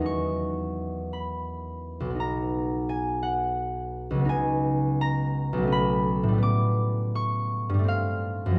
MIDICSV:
0, 0, Header, 1, 2, 480
1, 0, Start_track
1, 0, Tempo, 708383
1, 36, Time_signature, 3, 2, 24, 8
1, 4353, Tempo, 728155
1, 5313, Tempo, 773196
1, 5753, End_track
2, 0, Start_track
2, 0, Title_t, "Harp"
2, 0, Program_c, 0, 46
2, 0, Note_on_c, 0, 40, 47
2, 0, Note_on_c, 0, 54, 41
2, 0, Note_on_c, 0, 56, 39
2, 0, Note_on_c, 0, 75, 68
2, 0, Note_on_c, 0, 78, 74
2, 8, Note_on_c, 0, 63, 41
2, 39, Note_on_c, 0, 85, 88
2, 766, Note_on_c, 0, 83, 78
2, 1274, Note_off_c, 0, 85, 0
2, 1358, Note_on_c, 0, 35, 56
2, 1382, Note_off_c, 0, 54, 0
2, 1390, Note_on_c, 0, 54, 45
2, 1425, Note_on_c, 0, 59, 44
2, 1442, Note_off_c, 0, 40, 0
2, 1447, Note_off_c, 0, 63, 0
2, 1455, Note_on_c, 0, 63, 44
2, 1475, Note_off_c, 0, 56, 0
2, 1490, Note_on_c, 0, 82, 83
2, 1906, Note_off_c, 0, 75, 0
2, 1960, Note_on_c, 0, 80, 94
2, 2160, Note_off_c, 0, 78, 0
2, 2186, Note_on_c, 0, 78, 85
2, 2359, Note_off_c, 0, 80, 0
2, 2782, Note_on_c, 0, 37, 63
2, 2803, Note_off_c, 0, 54, 0
2, 2811, Note_on_c, 0, 54, 52
2, 2834, Note_off_c, 0, 59, 0
2, 2843, Note_on_c, 0, 59, 52
2, 2865, Note_off_c, 0, 35, 0
2, 2870, Note_off_c, 0, 63, 0
2, 2878, Note_on_c, 0, 63, 50
2, 2908, Note_on_c, 0, 80, 99
2, 2932, Note_off_c, 0, 82, 0
2, 3396, Note_on_c, 0, 82, 105
2, 3408, Note_off_c, 0, 83, 0
2, 3746, Note_on_c, 0, 35, 69
2, 3769, Note_off_c, 0, 54, 0
2, 3777, Note_on_c, 0, 54, 61
2, 3812, Note_on_c, 0, 57, 57
2, 3833, Note_off_c, 0, 37, 0
2, 3844, Note_on_c, 0, 61, 54
2, 3878, Note_on_c, 0, 83, 114
2, 3881, Note_off_c, 0, 63, 0
2, 3896, Note_off_c, 0, 80, 0
2, 4212, Note_off_c, 0, 82, 0
2, 4224, Note_on_c, 0, 45, 71
2, 4257, Note_on_c, 0, 55, 58
2, 4284, Note_off_c, 0, 57, 0
2, 4292, Note_on_c, 0, 57, 57
2, 4309, Note_off_c, 0, 35, 0
2, 4315, Note_off_c, 0, 59, 0
2, 4323, Note_on_c, 0, 59, 59
2, 4325, Note_off_c, 0, 54, 0
2, 4354, Note_on_c, 0, 86, 109
2, 4358, Note_off_c, 0, 61, 0
2, 4369, Note_off_c, 0, 78, 0
2, 4834, Note_on_c, 0, 85, 120
2, 5190, Note_on_c, 0, 43, 72
2, 5212, Note_off_c, 0, 55, 0
2, 5220, Note_on_c, 0, 55, 61
2, 5245, Note_off_c, 0, 57, 0
2, 5253, Note_on_c, 0, 57, 64
2, 5270, Note_off_c, 0, 45, 0
2, 5284, Note_on_c, 0, 60, 59
2, 5315, Note_on_c, 0, 77, 98
2, 5318, Note_off_c, 0, 59, 0
2, 5334, Note_off_c, 0, 83, 0
2, 5650, Note_off_c, 0, 85, 0
2, 5672, Note_on_c, 0, 42, 72
2, 5700, Note_on_c, 0, 53, 55
2, 5731, Note_on_c, 0, 56, 57
2, 5753, Note_off_c, 0, 42, 0
2, 5753, Note_off_c, 0, 43, 0
2, 5753, Note_off_c, 0, 53, 0
2, 5753, Note_off_c, 0, 55, 0
2, 5753, Note_off_c, 0, 56, 0
2, 5753, Note_off_c, 0, 57, 0
2, 5753, Note_off_c, 0, 60, 0
2, 5753, Note_off_c, 0, 77, 0
2, 5753, Note_off_c, 0, 86, 0
2, 5753, End_track
0, 0, End_of_file